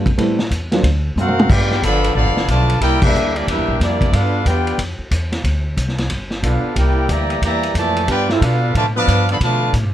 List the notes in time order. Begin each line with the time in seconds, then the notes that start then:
Already playing: G2
0.06 kick, ride
0.18 A2 G3 A3 B3 C4 E4, kick, ride
0.39 snare
0.51 E2, kick, hi-hat pedal, ride
0.72 F#3 A#3 C4 D4 F4, snare, ride
0.83 D2, kick, ride
1.16 F#2 A#3 C4 F#4 A#4 F5 F#5, hi-hat pedal, mid tom
1.28 mid tom
1.39 mid tom
1.49 G2 B3 D4 F4 G4 B4 D5 G5, kick, crash
1.71 snare
1.82 G1 D3 F3 B3 A4 D5 F5 B5, kick, hi-hat pedal, ride
2.04 ride
2.15 A1 D3 F3 B3 A4 D5 F5 B5, kick
2.25 G1
2.36 F1, snare
2.48 B1 D3 F3 A3 F4 B4 D5 A5, kick, hi-hat pedal, ride
2.69 ride
2.81 C2 A#3 E4 G4 A#4 D5 G5, kick, ride
3.02 G3 A#3 D4 E4 G4 A#4 E5, kick, crash
3.13 D2, hi-hat pedal
3.35 G3 A#3 D4 E4 G4 D5, ride
3.47 E2 G3 A#3 D4 E4 G4 A#4 E5, kick, ride
3.57 C2
3.68 A#1
3.80 F2 G3 A#3 D4 E4 G4 D5, kick, snare, hi-hat pedal, ride
4.01 kick, ride
4.12 G2 B3 D4 F4 A4 B4 F5, kick, ride
4.44 E2 B3 D4 F4 G4 B4 D5 G5, kick, hi-hat pedal, ride
4.67 ride
4.78 F2, kick, ride
4.99 muted upright bass stroke
5.11 E2, kick, hi-hat pedal, ride
5.32 snare, ride
5.44 D2, kick, ride
5.77 C2, kick, hi-hat pedal, ride
5.88 snare
5.98 snare, ride
6.10 G1, kick, ride
6.31 snare
6.41 B1 B3 D4 F4 A4 B4 F5, kick, hi-hat pedal, ride
6.63 muted upright bass stroke
6.75 C2 A#3 E4 G4 A#4 D5 G5, kick, ride
7.09 D2 E3 G3 A#3 G4 D5 E5 A#5, kick, hi-hat pedal, ride
7.30 ride
7.41 E2 E3 G3 A#3 G4 D5 E5 A#5, kick, ride
7.63 ride
7.75 F2 A#2 E3 A3 G4 D5 E5 A5, kick, hi-hat pedal, ride
7.96 ride
8.07 G2 B3 D4 F4 G4 B4 D5 G5, kick, ride
8.29 C4 E4 F4 A4 E5, snare
8.41 B2 B3 D4 F4 A4 B4 F5, kick, hi-hat pedal, ride
8.74 A2 D3 F3 A3 F4 B4 D5 A5, kick, ride
8.96 F3 B3 D4 B4 F5 A5 D6
9.08 G2, kick, hi-hat pedal, ride
9.29 D3 F3 B3 A4 D5 F5 B5, ride
9.40 B2 D3 F3 A3 F4 B4 D5, kick, ride
9.44 A5
9.73 A2, kick, hi-hat pedal, ride
9.83 G2